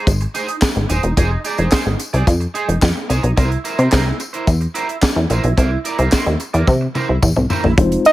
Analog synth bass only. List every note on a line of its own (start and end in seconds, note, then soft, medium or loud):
0.07 0.27 G#1 medium
0.76 0.86 G#1 medium
0.90 1.00 D#1 medium
1.03 1.13 E1 loud
1.17 1.37 F1 loud
1.58 1.68 F1 medium
1.86 1.96 G#1 medium
2.13 2.23 C2 medium
2.27 2.47 F2 medium
2.68 2.78 F1 medium
2.82 2.92 F2 loud
3.10 3.19 C2 medium
3.23 3.33 B1 loud
3.37 3.57 C2 loud
3.79 3.88 C3 medium
3.93 4.12 C2 medium
4.47 4.67 E2 medium
5.16 5.26 E2 medium
5.30 5.40 A#1 medium
5.44 5.54 B1 loud
5.58 5.77 C2 loud
5.99 6.09 C2 loud
6.26 6.36 D#2 medium
6.54 6.64 E2 medium
6.68 6.87 C3 medium
7.09 7.19 C2 medium
7.23 7.32 E2 medium
7.37 7.46 C2 medium
7.64 7.74 A#1 medium
7.78 7.97 F1 medium